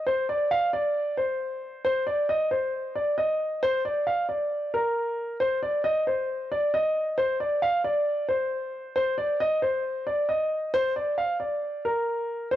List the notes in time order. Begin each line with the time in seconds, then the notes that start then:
0.07 C5
0.29 D5
0.51 F5
0.73 D5
1.17 C5
1.85 C5
2.07 D5
2.29 D#5
2.51 C5
2.95 D5
3.18 D#5
3.63 C5
3.85 D5
4.07 F5
4.29 D5
4.74 A#4
5.40 C5
5.63 D5
5.84 D#5
6.07 C5
6.52 D5
6.74 D#5
7.18 C5
7.40 D5
7.62 F5
7.84 D5
8.29 C5
8.96 C5
9.18 D5
9.40 D#5
9.62 C5
10.07 D5
10.29 D#5
10.74 C5
10.96 D5
11.18 F5
11.40 D5
11.85 A#4
12.51 C5